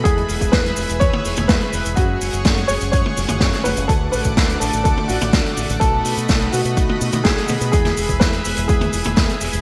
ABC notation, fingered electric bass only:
X:1
M:4/4
L:1/16
Q:1/4=125
K:Emix
V:1 name="Fingered electric bass" clef=bass
E,,2 E,,, E,,, E,,2 E,,, E,,, E,, z E,,, E,,, E,, z E,,, E,,, | F,,2 F,,, F,,, F,,2 F,,, F,,, F,, z F,,, F,,, F,, z F,,, F,,, | D,,2 A,,, A,,, D,,2 A,,, A,,, D,, z A,,, A,,, D,, z A,,, A,,, | B,,,2 B,, B,, B,,,2 B,, B,, B,,, z B,, B,, B,,, z B,, B,, |
E,,2 E,,, E,,, E,,2 E,,, E,,, E,,2 E,,, E,,, E,, z E,,, E,,, |]